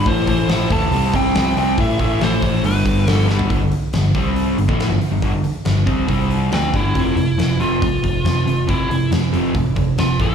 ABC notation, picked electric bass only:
X:1
M:4/4
L:1/16
Q:1/4=139
K:Flyd
V:1 name="Picked electric bass" clef=bass
A,,,2 A,,,2 A,,,2 D,,2 C,,2 C,,2 C,,2 C,,2 | A,,,2 A,,,2 A,,,2 A,,,2 G,,,2 G,,,2 G,,,4 | G,,, G,,, z2 G,,,2 C,,4 G,,, A,,,2 G,,, z G,,, | G,,, G,,, z2 G,,,2 C,,2 C,,4 D,,2 G,,,2 |
F,,,2 F,,,2 F,,,2 F,,,2 C,,2 F,,,2 F,,2 F,,,2 | F,,,2 F,,,2 F,,2 F,,,2 A,,,2 F,,,2 F,,,2 A,,,2 |]